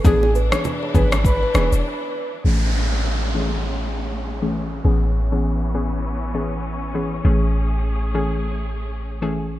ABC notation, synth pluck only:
X:1
M:4/4
L:1/16
Q:"Swing 16ths" 1/4=100
K:A
V:1 name="Synth pluck"
[E,B,DG]3 [E,B,DG]3 [E,B,DG]2 z2 [E,B,DG] z4 z | [E,A,CG]6 [E,A,CG]2 z4 z [E,A,CG] z2 | [E,B,CG]3 [E,B,CG]3 [E,B,CG]2 z2 [E,B,CG] z3 [E,B,CG] z | [E,A,CG]6 [E,A,CG]2 z4 z [E,A,CG] z2 |]